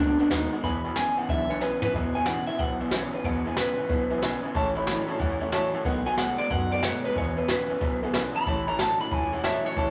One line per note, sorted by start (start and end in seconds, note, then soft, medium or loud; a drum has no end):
0.00 0.16 C#2 medium
0.00 0.17 B2 loud
0.00 0.19 B2 medium
0.00 0.20 D#3 medium
0.00 0.18 A3 medium
0.00 0.20 A3 medium
0.00 0.19 B3 medium
0.00 0.18 D4 loud
0.00 0.17 F#4 medium
0.00 0.11 B4 medium
0.00 0.12 D#5 medium
0.00 0.12 F#5 medium
0.19 0.30 B2 medium
0.19 0.30 A3 medium
0.19 0.30 A3 soft
0.19 0.32 B3 medium
0.19 0.30 D4 loud
0.19 0.31 F#4 medium
0.19 0.26 B4 loud
0.19 0.27 D#5 medium
0.19 0.27 F#5 loud
0.19 muted upright bass stroke medium
0.30 0.49 D#2 medium
0.30 0.50 B2 medium
0.30 0.52 D#3 medium
0.30 0.50 G#3 medium
0.30 0.52 A3 medium
0.30 0.53 B3 medium
0.30 0.51 D#4 loud
0.30 0.51 F#4 medium
0.30 0.44 B4 loud
0.30 0.44 D#5 loud
0.30 0.44 F#5 loud
0.30 snare loud
0.52 0.63 B2 medium
0.52 0.63 G#3 medium
0.52 0.65 A3 soft
0.52 0.65 B3 soft
0.52 0.64 F#4 medium
0.52 0.59 B4 medium
0.52 0.59 D#5 medium
0.52 0.59 F#5 medium
0.52 muted upright bass stroke medium
0.63 1.01 E2 medium
0.63 0.83 E2 medium
0.63 0.85 E2 medium
0.63 0.83 B2 medium
0.63 0.85 B2 medium
0.63 0.85 E3 medium
0.63 0.85 G#3 medium
0.63 0.84 B3 medium
0.63 0.83 E4 medium
0.63 0.76 B4 loud
0.63 0.76 E5 medium
0.63 0.77 G#5 loud
0.63 0.95 B5 medium
0.63 kick loud
0.63 closed hi-hat medium
0.83 0.95 E2 medium
0.83 0.95 B2 medium
0.83 0.96 G#3 soft
0.83 0.97 B3 soft
0.83 0.96 E4 medium
0.83 0.91 B4 medium
0.83 0.91 E5 medium
0.83 0.92 G#5 medium
0.88 0.95 E3 soft
0.95 1.15 E2 medium
0.95 1.15 C#3 loud
0.95 1.17 E3 medium
0.95 1.18 G#3 medium
0.95 1.18 B3 medium
0.95 1.08 B4 medium
0.95 1.09 E5 medium
0.95 1.18 G#5 loud
0.95 snare loud
0.95 closed hi-hat medium
1.00 1.16 E4 medium
1.16 1.28 E2 medium
1.16 1.28 C#3 medium
1.16 1.30 B3 medium
1.16 1.29 E4 medium
1.16 1.24 B4 medium
1.16 1.24 E5 medium
1.16 1.24 F#5 medium
1.16 1.29 F#5 medium
1.16 muted upright bass stroke medium
1.16 closed hi-hat medium
1.20 1.29 E3 soft
1.20 1.30 G#3 soft
1.28 1.66 B1 medium
1.28 1.48 E2 medium
1.28 1.50 E2 medium
1.28 1.50 B2 medium
1.28 1.48 D3 medium
1.28 1.51 E3 medium
1.28 1.51 G#3 medium
1.28 1.50 B3 medium
1.28 1.49 E4 loud
1.28 1.41 B4 medium
1.28 1.41 E5 medium
1.28 1.50 E5 medium
1.28 1.42 F#5 medium
1.28 kick loud
1.28 closed hi-hat medium
1.49 1.60 E2 medium
1.49 1.61 D3 medium
1.49 1.61 G#3 soft
1.49 1.62 B3 soft
1.49 1.61 E4 soft
1.49 1.56 B4 loud
1.49 1.61 C#5 medium
1.49 1.57 E5 medium
1.49 1.57 G#5 loud
1.53 1.59 E3 soft
1.61 1.81 E2 medium
1.61 1.81 C#3 medium
1.61 1.82 E3 medium
1.61 1.82 G#3 medium
1.61 1.81 B3 medium
1.61 1.80 E4 medium
1.61 1.74 B4 loud
1.61 1.81 B4 loud
1.61 1.74 E5 medium
1.61 1.74 G#5 loud
1.61 snare medium
1.81 1.93 E2 medium
1.81 1.94 C#3 medium
1.81 1.93 E3 soft
1.81 1.93 G#3 soft
1.81 1.94 B3 soft
1.81 1.93 E4 medium
1.81 1.89 B4 medium
1.81 1.94 B4 loud
1.81 1.89 E5 medium
1.81 1.90 G#5 medium
1.81 muted upright bass stroke medium
1.81 floor tom medium
1.93 2.15 E2 medium
1.93 2.32 E2 medium
1.93 2.14 E2 medium
1.93 2.15 B2 medium
1.93 2.14 B2 medium
1.93 2.15 E3 medium
1.93 2.15 G#3 medium
1.93 2.15 B3 medium
1.93 2.13 E4 medium
1.93 2.07 B4 loud
1.93 2.07 E5 medium
1.93 2.07 G#5 loud
1.93 kick loud
1.93 open hi-hat soft
2.14 2.26 E2 medium
2.14 2.26 B2 medium
2.14 2.25 E3 soft
2.14 2.26 G#3 soft
2.14 2.26 B3 soft
2.14 2.26 E4 medium
2.14 2.22 B4 medium
2.14 2.22 E5 medium
2.14 2.23 F#5 medium
2.14 2.26 G#5 medium
2.26 2.47 E2 medium
2.26 2.46 E2 medium
2.26 2.48 B2 medium
2.26 2.46 C#3 loud
2.26 2.48 E3 medium
2.26 2.48 G#3 medium
2.26 2.47 B3 medium
2.26 2.46 E4 medium
2.26 2.40 B4 medium
2.26 2.40 E5 medium
2.26 2.47 F#5 loud
2.26 2.40 G#5 medium
2.26 snare loud
2.26 open hi-hat soft
2.47 2.58 E2 medium
2.47 2.59 C#3 medium
2.47 2.58 E3 soft
2.47 2.59 G#3 soft
2.47 2.60 B3 medium
2.47 2.59 E4 medium
2.47 2.55 B4 medium
2.47 2.59 E5 medium
2.47 2.55 E5 medium
2.47 2.56 G#5 medium
2.47 muted upright bass stroke medium
2.59 2.97 B1 medium
2.59 2.78 E2 medium
2.59 2.79 B2 medium
2.59 2.80 E3 medium
2.59 2.81 G#3 medium
2.59 2.80 B3 medium
2.59 2.79 E4 medium
2.59 2.72 B4 medium
2.59 2.72 E5 medium
2.59 2.81 F#5 medium
2.59 2.73 F#5 medium
2.59 kick loud
2.59 open hi-hat soft
2.80 2.90 E2 medium
2.80 2.91 B2 medium
2.80 2.92 E3 soft
2.80 2.92 G#3 soft
2.80 2.92 B3 medium
2.80 2.92 E4 medium
2.80 2.88 B4 medium
2.80 2.92 E5 medium
2.80 2.88 E5 medium
2.80 2.88 G#5 medium
2.91 3.11 E2 medium
2.91 3.13 E2 medium
2.91 3.13 B2 medium
2.91 3.11 C#3 medium
2.91 3.13 E3 medium
2.91 3.14 G#3 medium
2.91 3.13 B3 medium
2.91 3.11 E4 medium
2.91 3.05 B4 loud
2.91 3.14 C#5 medium
2.91 3.05 E5 loud
2.91 3.06 G#5 loud
2.91 snare loud
3.13 3.23 E2 medium
3.13 3.24 C#3 medium
3.13 3.24 E3 soft
3.13 3.25 G#3 soft
3.13 3.25 B3 soft
3.13 3.24 E4 medium
3.13 3.20 B4 medium
3.13 3.25 B4 medium
3.13 3.20 E5 medium
3.13 3.21 G#5 medium
3.13 muted upright bass stroke medium
3.24 3.43 E2 medium
3.24 3.62 E2 loud
3.24 3.46 E2 medium
3.24 3.44 B2 loud
3.24 3.46 B2 medium
3.24 3.46 E3 medium
3.24 3.46 G#3 medium
3.24 3.45 B3 medium
3.24 3.44 E4 loud
3.24 3.37 B4 loud
3.24 3.46 C#5 medium
3.24 3.37 E5 medium
3.24 3.38 F#5 loud
3.24 kick loud
3.24 open hi-hat soft
3.45 3.55 E2 medium
3.45 3.56 B2 medium
3.45 3.56 E3 soft
3.45 3.57 G#3 medium
3.45 3.57 B3 medium
3.45 3.57 E4 medium
3.45 3.53 B4 medium
3.45 3.57 B4 medium
3.45 3.53 E5 medium
3.45 3.53 G#5 loud
3.56 3.78 E2 medium
3.56 3.76 E2 medium
3.56 3.78 B2 medium
3.56 3.76 C#3 loud
3.56 3.78 E3 medium
3.56 3.79 G#3 medium
3.56 3.78 B3 medium
3.56 3.76 E4 medium
3.56 3.70 B4 medium
3.56 4.21 B4 loud
3.56 snare loud
3.78 3.88 E2 medium
3.78 3.89 C#3 loud
3.78 3.88 E3 medium
3.78 3.89 G#3 medium
3.78 3.90 B3 medium
3.78 3.90 E4 medium
3.78 3.85 B4 medium
3.78 3.85 E5 medium
3.78 3.86 G#5 medium
3.78 muted upright bass stroke medium
3.89 4.27 B1 medium
3.89 4.08 E2 medium
3.89 4.09 B2 medium
3.89 4.10 E3 medium
3.89 4.11 G#3 medium
3.89 4.11 B3 medium
3.89 4.09 E4 medium
3.89 4.02 B4 medium
3.89 4.03 E5 medium
3.89 4.03 F#5 medium
3.89 kick loud
3.89 open hi-hat medium
4.10 4.20 E2 medium
4.10 4.21 B2 medium
4.10 4.22 E3 soft
4.10 4.22 G#3 medium
4.10 4.23 B3 medium
4.10 4.22 E4 medium
4.10 4.17 B4 medium
4.10 4.18 E5 medium
4.10 4.18 G#5 loud
4.22 4.41 E2 medium
4.22 4.43 E2 medium
4.22 4.44 B2 medium
4.22 4.41 C#3 medium
4.22 4.44 E3 medium
4.22 4.44 G#3 medium
4.22 4.43 B3 medium
4.22 4.42 E4 medium
4.22 4.35 B4 loud
4.22 4.35 E5 loud
4.22 4.36 G#5 loud
4.22 snare loud
4.43 4.54 E2 medium
4.43 4.54 C#3 medium
4.43 4.54 E3 medium
4.43 4.55 G#3 medium
4.43 4.55 B3 medium
4.43 4.55 E4 medium
4.43 4.50 B4 medium
4.43 4.51 E5 medium
4.43 4.51 G#5 medium
4.43 muted upright bass stroke medium
4.54 4.92 A1 loud
4.54 4.74 A2 medium
4.54 4.76 A2 medium
4.54 4.74 E3 medium
4.54 4.76 E3 medium
4.54 4.76 A3 medium
4.54 4.76 C#4 loud
4.54 4.75 E4 loud
4.54 4.68 C#5 loud
4.54 4.68 E5 loud
4.54 4.68 A5 loud
4.54 kick loud
4.54 open hi-hat soft
4.75 4.85 A2 medium
4.75 4.86 E3 medium
4.75 4.88 C#4 medium
4.75 4.88 E4 medium
4.75 4.83 C#5 loud
4.75 4.83 E5 loud
4.75 4.84 B5 loud
4.79 4.87 A3 medium
4.87 5.06 A2 medium
4.87 5.08 A2 medium
4.87 5.09 E3 medium
4.87 5.07 F#3 loud
4.87 5.09 A3 loud
4.87 5.08 C#4 loud
4.87 5.06 E4 loud
4.87 5.01 E5 medium
4.87 5.01 B5 loud
4.87 snare loud
4.87 open hi-hat medium
5.08 5.18 A2 medium
5.08 5.19 F#3 medium
5.08 5.19 A3 medium
5.08 5.20 C#4 medium
5.08 5.20 E4 medium
5.08 5.15 C#5 medium
5.08 5.16 E5 medium
5.08 5.16 A5 medium
5.08 muted upright bass stroke medium
5.19 5.57 E2 medium
5.19 5.39 A2 medium
5.19 5.41 E3 medium
5.19 5.39 E3 medium
5.19 5.41 A3 medium
5.19 5.41 C#4 medium
5.19 5.39 E4 medium
5.19 5.33 C#5 loud
5.19 5.33 E5 medium
5.19 5.33 F#5 loud
5.19 kick loud
5.19 open hi-hat medium
5.40 5.51 A2 medium
5.40 5.52 E3 medium
5.40 5.53 A3 medium
5.40 5.53 C#4 medium
5.40 5.52 E4 medium
5.40 5.48 C#5 medium
5.40 5.48 E5 medium
5.40 5.49 F#5 loud
5.52 5.73 A2 loud
5.52 5.72 A2 medium
5.52 5.74 E3 medium
5.52 5.72 F#3 medium
5.52 5.74 A3 medium
5.52 5.74 C#4 loud
5.52 5.72 E4 medium
5.52 5.65 C#5 loud
5.52 5.66 E5 loud
5.52 5.66 A5 loud
5.52 snare loud
5.73 5.84 A2 medium
5.73 5.84 F#3 medium
5.73 5.85 A3 medium
5.73 5.86 C#4 medium
5.73 5.85 E4 medium
5.73 5.82 A5 medium
5.73 muted upright bass stroke medium
5.85 6.23 B1 medium
5.85 6.06 B2 loud
5.85 6.04 B2 medium
5.85 6.07 D#3 medium
5.85 6.04 F#3 medium
5.85 6.07 A3 medium
5.85 6.06 B3 medium
5.85 6.05 F#4 medium
5.85 5.98 B4 loud
5.85 5.98 D#5 loud
5.85 5.99 F#5 loud
5.85 kick loud
5.85 open hi-hat soft
6.06 6.17 B2 medium
6.06 6.17 F#3 medium
6.06 6.18 B3 medium
6.06 6.18 F#4 medium
6.06 6.13 B4 medium
6.06 6.14 D#5 medium
6.06 6.14 F#5 medium
6.06 6.18 G#5 loud
6.17 6.39 B2 medium
6.17 6.37 B2 medium
6.17 6.39 D#3 medium
6.17 6.37 G#3 medium
6.17 6.40 A3 medium
6.17 6.39 B3 medium
6.17 6.37 F#4 medium
6.17 6.31 B4 medium
6.17 6.31 D#5 medium
6.17 6.39 F#5 medium
6.17 6.31 F#5 medium
6.17 snare loud
6.38 6.49 B2 medium
6.38 6.50 G#3 medium
6.38 6.50 A3 soft
6.38 6.51 B3 medium
6.38 6.50 F#4 medium
6.38 6.46 B4 medium
6.38 6.50 D5 medium
6.38 6.46 D#5 medium
6.38 6.47 F#5 medium
6.38 muted upright bass stroke medium
6.50 6.88 F#2 medium
6.50 6.69 B2 medium
6.50 6.71 D#3 medium
6.50 6.70 F#3 medium
6.50 6.72 A3 medium
6.50 6.72 B3 medium
6.50 6.70 F#4 medium
6.50 6.63 B4 medium
6.50 6.64 D#5 medium
6.50 6.71 F#5 medium
6.50 6.64 G#5 medium
6.50 kick loud
6.50 open hi-hat medium
6.71 6.81 B2 medium
6.71 6.82 F#3 medium
6.71 6.83 A3 soft
6.71 6.84 B3 soft
6.71 6.83 F#4 medium
6.71 6.79 B4 medium
6.71 6.83 D5 medium
6.71 6.79 D#5 medium
6.71 6.79 F#5 medium
6.82 7.02 B2 medium
6.82 7.04 B2 medium
6.82 7.05 D#3 medium
6.82 7.02 G#3 loud
6.82 7.05 A3 medium
6.82 7.05 B3 medium
6.82 7.03 F#4 medium
6.82 6.96 B4 loud
6.82 7.04 C#5 medium
6.82 6.96 D#5 loud
6.82 6.97 F#5 loud
6.82 snare loud
6.82 open hi-hat medium
7.04 7.15 B2 medium
7.04 7.15 G#3 medium
7.04 7.17 A3 soft
7.04 7.17 B3 soft
7.04 7.16 F#4 medium
7.04 7.11 B4 medium
7.04 7.16 B4 loud
7.04 7.12 D#5 medium
7.04 muted upright bass stroke medium
7.15 7.35 E2 medium
7.15 7.37 E2 medium
7.15 7.53 E2 medium
7.15 7.35 B2 medium
7.15 7.37 B2 medium
7.15 7.38 E3 medium
7.15 7.38 G#3 medium
7.15 7.37 B3 medium
7.15 7.35 E4 medium
7.15 7.29 B4 loud
7.15 7.38 C#5 medium
7.15 7.29 E5 medium
7.15 7.30 G#5 loud
7.15 kick loud
7.15 open hi-hat soft
7.36 7.47 E2 medium
7.36 7.47 B2 medium
7.36 7.48 E3 soft
7.36 7.49 G#3 medium
7.36 7.49 B3 medium
7.36 7.48 E4 medium
7.36 7.44 B4 loud
7.36 7.48 B4 medium
7.36 7.44 E5 medium
7.36 7.45 G#5 medium
7.48 7.68 E2 medium
7.48 7.70 E2 medium
7.48 7.70 B2 medium
7.48 7.68 C#3 loud
7.48 7.70 E3 medium
7.48 7.71 G#3 medium
7.48 7.69 B3 medium
7.48 7.68 E4 loud
7.48 7.61 B4 medium
7.48 8.12 B4 loud
7.48 7.61 E5 medium
7.48 7.62 G#5 medium
7.48 snare loud
7.48 open hi-hat medium
7.69 7.79 E2 medium
7.69 7.80 C#3 medium
7.69 7.80 E3 medium
7.69 7.81 G#3 medium
7.69 7.82 B3 medium
7.69 7.81 E4 medium
7.69 7.76 B4 medium
7.69 7.77 E5 medium
7.69 7.77 G#5 medium
7.69 muted upright bass stroke medium
7.81 8.19 B1 medium
7.81 8.00 E2 medium
7.81 8.00 B2 medium
7.81 8.02 E3 medium
7.81 8.03 G#3 medium
7.81 8.02 B3 medium
7.81 8.01 E4 medium
7.81 7.94 B4 medium
7.81 7.94 E5 medium
7.81 7.94 G#5 medium
7.81 kick loud
7.81 open hi-hat soft
8.02 8.13 E2 medium
8.02 8.13 B2 medium
8.02 8.13 E3 soft
8.02 8.14 G#3 soft
8.02 8.14 B3 soft
8.02 8.14 E4 medium
8.02 8.09 B4 medium
8.02 8.10 E5 medium
8.02 8.10 G#5 loud
8.13 8.35 E2 medium
8.13 8.33 E2 medium
8.13 8.35 B2 medium
8.13 8.33 C#3 medium
8.13 8.35 E3 medium
8.13 8.35 G#3 medium
8.13 8.34 B3 medium
8.13 8.33 E4 loud
8.13 8.26 B4 loud
8.13 8.27 E5 loud
8.13 8.27 G#5 loud
8.13 snare loud
8.34 8.45 E2 medium
8.34 8.46 C#3 medium
8.34 8.45 E3 soft
8.34 8.47 G#3 medium
8.34 8.47 B3 medium
8.34 8.46 E4 medium
8.34 8.42 B4 medium
8.34 8.42 E5 medium
8.34 8.67 B5 loud
8.34 muted upright bass stroke medium
8.46 8.84 A1 loud
8.46 8.65 A2 medium
8.46 8.67 A2 medium
8.46 8.68 E3 medium
8.46 8.66 E3 loud
8.46 8.68 A3 medium
8.46 8.68 C#4 medium
8.46 8.66 E4 medium
8.46 8.59 C#5 medium
8.46 8.59 E5 medium
8.46 8.59 A5 loud
8.46 kick loud
8.46 open hi-hat soft
8.66 8.78 A2 medium
8.66 8.78 E3 medium
8.66 8.79 C#4 medium
8.66 8.79 E4 medium
8.66 8.74 C#5 medium
8.66 8.74 E5 medium
8.66 8.75 A5 loud
8.66 8.79 A#5 medium
8.71 8.79 A3 soft
8.79 9.00 A2 medium
8.79 8.98 A2 medium
8.79 9.00 E3 medium
8.79 8.98 F#3 loud
8.79 9.01 A3 medium
8.79 9.01 C#4 loud
8.79 8.99 E4 medium
8.79 8.91 C#5 medium
8.79 8.92 E5 medium
8.79 9.00 A5 medium
8.79 8.92 A5 medium
8.79 snare loud
9.00 9.10 A2 medium
9.00 9.11 F#3 medium
9.00 9.11 A3 medium
9.00 9.12 C#4 medium
9.00 9.12 E4 medium
9.00 9.07 C#5 medium
9.00 9.07 E5 medium
9.00 9.08 F#5 medium
9.00 9.12 B5 medium
9.00 muted upright bass stroke medium
9.11 9.49 E1 medium
9.11 9.30 A2 medium
9.11 9.32 E3 medium
9.11 9.30 E3 medium
9.11 9.33 A3 medium
9.11 9.33 C#4 medium
9.11 9.31 E4 medium
9.11 9.24 C#5 medium
9.11 9.25 E5 medium
9.11 9.34 G#5 loud
9.11 9.25 A5 medium
9.11 kick loud
9.11 open hi-hat medium
9.32 9.42 A2 medium
9.32 9.43 E3 medium
9.32 9.43 A3 soft
9.32 9.44 C#4 medium
9.32 9.44 E4 soft
9.32 9.40 C#5 medium
9.32 9.40 E5 medium
9.32 9.44 F#5 medium
9.32 9.40 F#5 medium
9.44 9.63 A2 medium
9.44 9.65 A2 medium
9.44 9.65 E3 medium
9.44 9.63 F#3 loud
9.44 9.65 A3 medium
9.44 9.65 C#4 medium
9.44 9.63 E4 medium
9.44 9.57 C#5 loud
9.44 9.57 E5 loud
9.44 9.65 E5 medium
9.44 9.57 A5 loud
9.44 snare loud
9.65 9.75 A2 medium
9.65 9.76 F#3 medium
9.65 9.76 A3 soft
9.65 9.76 C#4 soft
9.65 9.76 E4 soft
9.65 9.90 C#5 loud
9.65 9.73 A5 medium
9.65 muted upright bass stroke medium
9.76 9.90 A1 loud
9.76 9.90 A2 medium
9.76 9.90 E3 medium
9.76 9.90 A3 medium
9.76 9.90 C#4 medium
9.76 9.90 E4 medium
9.76 9.89 C#5 loud
9.76 9.90 E5 medium
9.76 9.90 A5 loud
9.76 kick loud
9.76 open hi-hat medium